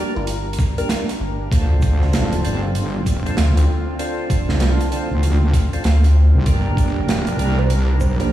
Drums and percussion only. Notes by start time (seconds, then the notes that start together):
0.27 closed hi-hat
0.53 closed hi-hat
0.59 kick, snare, shaker
0.78 closed hi-hat
0.89 snare, closed hi-hat
1.09 snare, closed hi-hat
1.52 kick, closed hi-hat
1.82 kick, closed hi-hat, shaker
2.02 snare
2.13 snare, closed hi-hat
2.33 closed hi-hat
2.45 closed hi-hat
2.75 closed hi-hat
3.06 kick, closed hi-hat, shaker
3.26 closed hi-hat
3.37 snare, closed hi-hat
3.57 closed hi-hat
3.99 closed hi-hat
4.30 kick, closed hi-hat, shaker
4.49 snare
4.60 snare, closed hi-hat
4.81 closed hi-hat
4.92 closed hi-hat
5.23 closed hi-hat
5.53 kick, snare, closed hi-hat, shaker
5.73 closed hi-hat
5.84 snare, closed hi-hat
6.04 snare, closed hi-hat
6.46 kick, closed hi-hat
6.77 kick, closed hi-hat
7.09 snare, closed hi-hat
7.27 closed hi-hat
7.39 closed hi-hat
7.70 closed hi-hat
8.00 kick, shaker
8.20 closed hi-hat